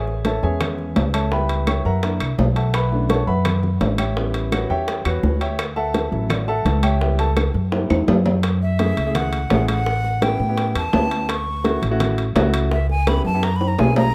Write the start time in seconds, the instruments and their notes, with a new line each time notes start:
Already playing: upright bass A1, grand piano G#4 C#5 E5 G#5
0.07 high bongo, high conga
0.25 grand piano A4 C#5 E5 A5, high bongo, high conga, high timbale
0.42 upright bass E2, grand piano G#3 B3 C#4 G#4 C#5 E5 G#5, high bongo, high conga
0.61 high bongo, high conga, low conga, high timbale, claves
0.78 high bongo, high conga
0.96 upright bass C#2, high bongo, low bongo, high conga, high timbale, low timbale
1.14 grand piano A4 C#5 E5 A5, high conga, high timbale, claves
1.31 grand piano G3 B3 E4 B4 E5 G5 B5, high bongo
1.49 high bongo, high conga, high timbale
1.67 grand piano C#5 E5 G5 C#6, high bongo, high conga, high timbale, claves
1.85 upright bass F#2, grand piano A#4 E5 F#5 A#5, high bongo, high conga
2.03 grand piano A#3 D4 E4, high bongo, high conga, high timbale
2.20 upright bass C2, high bongo, high conga, high timbale, claves
2.38 upright bass B1, high bongo, low bongo, high conga, low timbale
2.56 grand piano A4 E5 F#5 A5, high timbale
2.74 grand piano B4 E5 F#5 B5, high bongo, high conga, high timbale, claves
2.91 grand piano A3 C#4 D4 E4, high bongo, high conga
3.09 grand piano C#5 F#5 A5 C#6, high bongo, high conga, high timbale
3.27 upright bass F#2, grand piano B4 E5 F#5 B5, high bongo, high conga
3.45 high bongo, high conga, low conga, high timbale, claves
3.63 high bongo, high conga, low conga
3.81 upright bass A1, grand piano A3 C#4 D4 E4, high bongo, low bongo, high conga, high timbale, low timbale
3.98 grand piano G4 C#5 E5 G5, high conga, high timbale, claves
4.16 grand piano G3 B3 C#4 E4, high bongo, high conga
4.34 high bongo, high conga, high timbale
4.52 grand piano F#4 B4 C#5 F#5, high bongo, high conga, high timbale, claves
4.70 upright bass E2, grand piano G4 C#5 E5 G5, high bongo, high conga
4.88 high bongo, high conga, high timbale
5.05 upright bass E2, grand piano F#4 B4 C#5 F#5, high bongo, high conga, high timbale, claves
5.23 upright bass D2, high bongo, low bongo, high conga
5.41 grand piano G4 C#5 E5 G5, high timbale
5.59 high bongo, high conga, high timbale, claves
5.76 grand piano A4 E5 F#5 A5, high bongo, high conga
5.94 high bongo, high conga, high timbale
6.12 upright bass A1, grand piano F#3 C#4 E4, high bongo, high conga
6.29 grand piano F#4 C#5 D5 F#5, high bongo, high conga, low conga, high timbale, claves
6.48 grand piano A4 E5 F#5 A5, high bongo, high conga
6.65 upright bass C#2, high bongo, low bongo, high conga, high timbale
6.83 grand piano G4 C#5 E5 G5, high conga, high timbale, claves
7.01 grand piano G3 B3 E4, high bongo
7.19 grand piano A4 A5, high bongo, high conga, high timbale
7.36 high bongo, high conga, high timbale, claves
7.54 upright bass F#2, high bongo, high conga
7.71 grand piano G3 A#3 E4, high bongo, high conga, high timbale
7.90 upright bass E2, high bongo, high conga, high timbale, claves
8.08 upright bass F#2, high bongo, low bongo, low timbale
8.26 low conga, low timbale
8.43 high bongo, high conga, high timbale
8.61 flute E5, high conga
8.79 grand piano A3 C#4 E4 G#4, high bongo, high conga, high timbale, low timbale
8.97 upright bass C#2, high conga, high timbale
9.06 grand piano A3 C#4 E4 G#4
9.15 flute F#5, high bongo, high conga, low conga, high timbale
9.33 high conga, high timbale
9.50 upright bass A1, grand piano A3 C#4 E4 G#4, high bongo, low bongo, high conga, high timbale, low timbale
9.68 flute F#5, high conga, high timbale
9.86 high bongo, high conga
10.04 high bongo, high conga
10.21 grand piano B3 C#4 E4 G4, flute G5, high bongo, high conga, high timbale, low timbale
10.39 upright bass A2, high bongo
10.48 grand piano B3 C#4 E4 G4
10.58 high bongo, high conga, high timbale
10.75 upright bass E2, flute A5, high bongo, high conga, high timbale
10.92 upright bass D2, grand piano B3 C#4 E4 G4, high bongo, low bongo, high conga, low timbale
11.11 high timbale
11.29 flute C#6, high bongo, high conga, high timbale
11.47 high conga
11.64 grand piano A3 C#4 E4 F#4, high bongo, high conga, high timbale, low timbale
11.82 upright bass A1, high conga, high timbale
11.90 grand piano A3 C#4 E4 F#4
12.00 high bongo, high conga, low conga, high timbale
12.18 high conga, high timbale
12.35 upright bass C#2, grand piano A3 C#4 E4 F#4, high bongo, low bongo, high conga, high timbale, low timbale
12.54 high timbale
12.71 flute E5, high bongo, high conga
12.89 flute G#5, high bongo, high conga
13.07 grand piano B3 C#4 E4 G4, flute B5, high bongo, high conga, high timbale, low timbale
13.25 upright bass F#2, flute A5, high bongo
13.33 grand piano B3 C#4 E4 G4
13.43 flute A#5, high bongo, high conga, high timbale
13.56 flute B5
13.61 high bongo, high conga, high timbale
13.68 flute A#5
13.78 upright bass B1, grand piano A#3 C#4 E4 G#4, flute G#5, high bongo, low bongo, high conga, low timbale
13.96 flute A#5, high conga, low timbale